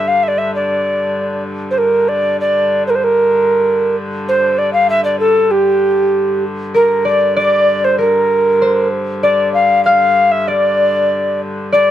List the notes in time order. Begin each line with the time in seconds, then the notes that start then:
Already playing: G2 D3
0.08 F5
0.23 E5
0.28 D5
0.38 E5
0.55 D5
1.71 C5
1.78 G2 D3 A#4
2.08 D5
2.40 D5
2.87 A#4 C5
2.95 C5
3.04 A#4
4.28 C5
4.58 D5
4.73 F5
4.90 E5
5.04 D5
5.19 A4
5.51 G4
6.74 G2 D3 A#4
7.05 D5
7.37 D5
7.84 C5
7.98 A#4
8.62 C5
9.23 D5
9.54 F5
9.85 F5
10.31 E5
10.48 D5
11.72 G2 D3 D5